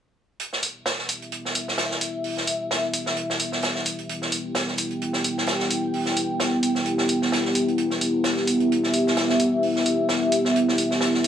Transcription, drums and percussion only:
0.40 closed hi-hat medium
0.53 snare soft
0.63 closed hi-hat medium
0.63 open hi-hat loud
0.86 snare loud
0.86 closed hi-hat medium
0.99 snare soft
1.09 closed hi-hat medium
1.09 open hi-hat medium
1.22 closed hi-hat soft
1.32 closed hi-hat medium
1.45 snare soft
1.55 closed hi-hat medium
1.55 open hi-hat loud
1.68 snare medium
1.78 snare loud
1.78 closed hi-hat medium
1.91 snare soft
2.01 closed hi-hat medium
2.01 open hi-hat medium
2.24 open hi-hat medium
2.37 snare soft
2.47 closed hi-hat medium
2.47 open hi-hat loud
2.71 snare loud
2.71 closed hi-hat medium
2.94 closed hi-hat medium
2.94 open hi-hat medium
3.06 snare medium
3.17 closed hi-hat medium
3.30 snare medium
3.40 closed hi-hat medium
3.40 open hi-hat loud
3.52 snare soft
3.62 snare loud
3.62 closed hi-hat medium
3.75 snare soft
3.86 closed hi-hat medium
3.86 open hi-hat medium
3.99 closed hi-hat soft
4.09 closed hi-hat medium
4.22 snare soft
4.32 closed hi-hat medium
4.32 open hi-hat loud
4.55 snare loud
4.55 closed hi-hat medium
4.68 snare soft
4.78 closed hi-hat medium
4.78 open hi-hat loud
4.91 closed hi-hat soft
5.02 closed hi-hat medium
5.13 snare soft
5.24 closed hi-hat medium
5.24 open hi-hat loud
5.38 snare medium
5.47 snare loud
5.47 closed hi-hat medium
5.60 snare medium
5.71 closed hi-hat medium
5.71 open hi-hat medium
5.94 open hi-hat medium
6.06 snare soft
6.16 closed hi-hat medium
6.16 open hi-hat loud
6.40 snare loud
6.40 closed hi-hat medium
6.63 closed hi-hat medium
6.63 open hi-hat medium
6.75 snare soft
6.86 closed hi-hat medium
6.98 snare medium
7.09 closed hi-hat medium
7.09 open hi-hat loud
7.22 snare soft
7.32 snare loud
7.32 closed hi-hat medium
7.45 snare soft
7.55 closed hi-hat medium
7.55 open hi-hat medium
7.68 closed hi-hat soft
7.78 closed hi-hat medium
7.90 snare soft
8.01 closed hi-hat medium
8.01 open hi-hat loud
8.24 snare loud
8.24 closed hi-hat medium
8.37 snare soft
8.47 closed hi-hat medium
8.47 open hi-hat medium
8.60 closed hi-hat soft
8.72 closed hi-hat medium
8.84 snare soft
8.94 closed hi-hat medium
8.94 open hi-hat loud
9.07 snare medium
9.17 snare loud
9.17 closed hi-hat medium
9.29 snare medium
9.39 closed hi-hat medium
9.39 open hi-hat medium
9.63 open hi-hat medium
9.76 snare soft
9.86 closed hi-hat medium
9.86 open hi-hat loud
10.09 snare loud
10.09 closed hi-hat medium
10.32 closed hi-hat medium
10.32 open hi-hat medium
10.45 snare soft
10.56 closed hi-hat loud
10.69 snare medium
10.78 closed hi-hat medium
10.78 open hi-hat medium
10.91 snare soft
11.01 snare loud
11.01 closed hi-hat medium
11.14 snare soft

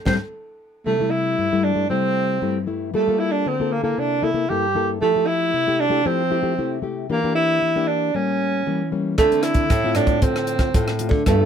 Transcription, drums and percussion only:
0.06 kick medium
0.06 snare medium
9.18 kick medium
9.18 cross-stick medium
9.18 closed hi-hat medium
9.32 closed hi-hat soft
9.43 cross-stick medium
9.43 closed hi-hat soft
9.54 kick medium
9.54 closed hi-hat soft
9.70 kick medium
9.70 cross-stick medium
9.70 closed hi-hat medium
9.95 cross-stick medium
9.95 closed hi-hat soft
10.07 kick medium
10.07 closed hi-hat soft
10.22 kick medium
10.22 closed hi-hat medium
10.36 cross-stick medium
10.36 closed hi-hat soft
10.47 closed hi-hat medium
10.59 kick medium
10.59 cross-stick medium
10.59 closed hi-hat soft
10.74 kick medium
10.74 closed hi-hat medium
10.88 cross-stick medium
10.99 closed hi-hat medium
11.11 kick medium
11.26 kick medium
11.26 cross-stick medium
11.26 closed hi-hat medium

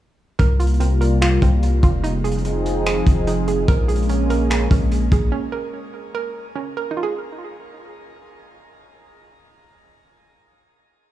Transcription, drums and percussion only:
0.39 kick loud
0.39 closed hi-hat medium
0.60 closed hi-hat medium
0.67 closed hi-hat medium
0.74 closed hi-hat soft
0.80 closed hi-hat medium
1.01 closed hi-hat medium
1.22 finger snap loud
1.22 closed hi-hat medium
1.42 kick medium
1.42 closed hi-hat medium
1.63 closed hi-hat medium
1.83 kick medium
1.83 closed hi-hat medium
2.04 closed hi-hat medium
2.25 closed hi-hat medium
2.32 closed hi-hat medium
2.38 closed hi-hat soft
2.45 closed hi-hat medium
2.66 closed hi-hat medium
2.86 finger snap loud
2.86 closed hi-hat medium
3.07 kick medium
3.07 closed hi-hat medium
3.27 closed hi-hat medium
3.48 closed hi-hat medium
3.68 kick loud
3.68 closed hi-hat medium
3.89 closed hi-hat medium
3.96 closed hi-hat medium
4.03 closed hi-hat soft
4.09 closed hi-hat medium
4.30 closed hi-hat medium
4.50 finger snap loud
4.50 closed hi-hat medium
4.71 kick medium
4.71 closed hi-hat medium
4.92 closed hi-hat medium
5.12 kick medium
5.12 closed hi-hat medium

